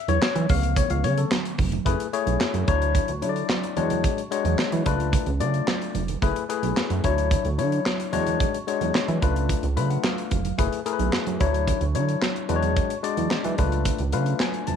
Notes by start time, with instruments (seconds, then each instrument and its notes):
0.08 analog synth bass E2, tine electric piano C#5, closed hi-hat, high conga
0.22 snare, clap, muted conga
0.36 analog synth bass E3, closed hi-hat, muted conga, high conga
0.49 analog synth bass C#2, tine electric piano D3 F3 A3 B3 F5, kick, open hi-hat
0.63 closed hi-hat
0.76 tine electric piano C#5, kick, closed hi-hat, muted conga, low conga
0.90 analog synth bass C#2, tine electric piano F5, closed hi-hat
1.04 analog synth bass C#3, tine electric piano C#5, closed hi-hat, high conga
1.18 tine electric piano A4, closed hi-hat
1.31 snare, clap, muted conga, high conga
1.45 closed hi-hat
1.58 analog synth bass F1, kick, open hi-hat, high conga, low conga
1.72 closed hi-hat, high conga, low conga
1.85 analog synth bass F#1, tine electric piano A3 E4 G#4 B4, kick, closed hi-hat, muted conga
1.99 closed hi-hat, muted conga
2.13 tine electric piano A3 E4 G#4 C#5, closed hi-hat
2.26 analog synth bass B1, closed hi-hat, high conga
2.40 snare, clap, muted conga
2.54 analog synth bass F#2, closed hi-hat, high conga
2.67 analog synth bass D2, tine electric piano F#3 D4 E4 C#5, kick, closed hi-hat
2.82 closed hi-hat
2.95 kick, closed hi-hat, low conga
3.08 analog synth bass D2, closed hi-hat
3.22 analog synth bass D3, tine electric piano F#3 D4 E4 C#5, closed hi-hat, high conga
3.29 tine electric piano D5
3.36 closed hi-hat
3.49 snare, clap, high conga
3.63 closed hi-hat, muted conga
3.77 analog synth bass E2, tine electric piano G#3 D4 F#4 C#5, closed hi-hat, high conga, low conga
3.90 closed hi-hat, high conga, low conga
4.04 kick, closed hi-hat, muted conga
4.17 closed hi-hat, muted conga
4.31 tine electric piano G#3 D4 F#4 C#5, closed hi-hat
4.44 analog synth bass E2, closed hi-hat, high conga
4.59 analog synth bass E3, snare, clap
4.72 analog synth bass E3, closed hi-hat, high conga
4.86 analog synth bass C#2, tine electric piano A3 D4 F4 B4, kick, closed hi-hat
5.00 closed hi-hat
5.13 kick, closed hi-hat, low conga
5.26 analog synth bass C#2, closed hi-hat
5.40 analog synth bass C#3, tine electric piano A3 D4 F4 D5, closed hi-hat, high conga
5.54 closed hi-hat
5.68 snare, clap, muted conga, high conga
5.82 closed hi-hat
5.95 analog synth bass F1, closed hi-hat, high conga, low conga
6.08 closed hi-hat, high conga, low conga
6.22 analog synth bass F#1, tine electric piano A3 E4 G#4 B4, kick, closed hi-hat, muted conga
6.35 closed hi-hat, muted conga
6.49 tine electric piano A3 E4 G#4 B4, closed hi-hat
6.63 analog synth bass B1, closed hi-hat, high conga
6.77 analog synth bass F#2, snare, clap
6.90 analog synth bass F#2, closed hi-hat, muted conga, high conga
7.04 analog synth bass D2, tine electric piano F#3 D4 E4 C#5, kick, closed hi-hat
7.18 closed hi-hat
7.31 kick, closed hi-hat, muted conga, low conga
7.45 analog synth bass D2, closed hi-hat, muted conga
7.58 analog synth bass D3, tine electric piano F#3 D4 E4 C#5, closed hi-hat, high conga
7.72 closed hi-hat
7.86 snare, clap, muted conga, high conga
7.99 closed hi-hat, muted conga
8.12 analog synth bass E2, tine electric piano G#3 D4 F#4 C#5, closed hi-hat, high conga, low conga
8.27 closed hi-hat, high conga, low conga
8.40 kick, closed hi-hat, muted conga
8.54 closed hi-hat
8.67 tine electric piano G#3 D4 F#4 C#5, closed hi-hat
8.81 analog synth bass E2, closed hi-hat, high conga
8.95 analog synth bass E3, snare, clap
9.08 analog synth bass E3, closed hi-hat, muted conga, high conga
9.22 analog synth bass C#2, tine electric piano A3 D4 F4 B4, kick, closed hi-hat
9.36 closed hi-hat
9.49 kick, closed hi-hat, low conga
9.63 analog synth bass C#2, closed hi-hat, muted conga
9.76 analog synth bass C#3, tine electric piano A3 D4 F4 B4 B5, closed hi-hat, high conga
9.90 tine electric piano F#5, closed hi-hat
10.04 tine electric piano F5, snare, clap, muted conga, high conga
10.18 closed hi-hat
10.31 analog synth bass F1, kick, closed hi-hat, high conga, low conga
10.45 closed hi-hat, high conga, low conga
10.58 analog synth bass F#1, tine electric piano A3 E4 G#4 B4, kick, closed hi-hat
10.73 closed hi-hat
10.86 tine electric piano A3 E4 G#4 A#4, closed hi-hat
10.93 tine electric piano B4
10.99 analog synth bass B1, closed hi-hat, high conga
11.13 snare, clap
11.27 analog synth bass F#2, closed hi-hat, muted conga, high conga
11.40 analog synth bass D2, tine electric piano F#3 D4 E4 C#5, kick, closed hi-hat
11.54 closed hi-hat
11.68 kick, closed hi-hat, low conga
11.81 analog synth bass D2, closed hi-hat
11.94 analog synth bass D3, tine electric piano F#3 D4 E4 C#5, closed hi-hat, high conga
12.09 closed hi-hat
12.22 snare, clap, muted conga, high conga
12.36 closed hi-hat, muted conga
12.49 analog synth bass E2, tine electric piano G#3 D4 F#4 B4, closed hi-hat, high conga, low conga
12.56 tine electric piano C#5
12.63 closed hi-hat, high conga, low conga
12.76 kick, closed hi-hat
12.90 closed hi-hat, muted conga
13.03 tine electric piano G#3 D4 F#4 D5, closed hi-hat
13.17 analog synth bass E2, closed hi-hat, high conga
13.31 analog synth bass E3, snare, clap, muted conga
13.44 analog synth bass E3, closed hi-hat, muted conga, high conga
13.58 analog synth bass C#2, tine electric piano A3 D4 F4 B4, kick, closed hi-hat
13.72 closed hi-hat
13.85 kick, closed hi-hat, muted conga, low conga
13.98 analog synth bass C#2, closed hi-hat, muted conga
14.12 analog synth bass C#3, tine electric piano A3 D4 F4 B4 F5, closed hi-hat, high conga
14.26 closed hi-hat
14.40 tine electric piano G#5, snare, clap, high conga
14.54 closed hi-hat
14.67 analog synth bass F1, tine electric piano A5, closed hi-hat, high conga, low conga